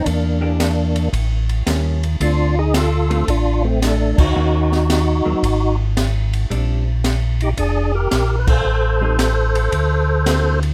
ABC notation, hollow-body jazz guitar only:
X:1
M:4/4
L:1/8
Q:"Swing" 1/4=112
K:Dphr
V:1 name="Hollow-body jazz guitar"
z [=E,B,DG] z4 [G,B,^C] z | [D,A,CF] z2 [D,A,CF] z4 | [E,B,_D_G] z2 [_G,B,C] z4 | [G,CD] z6 z |
z [G,CE] z4 [D,B,C^F] z |]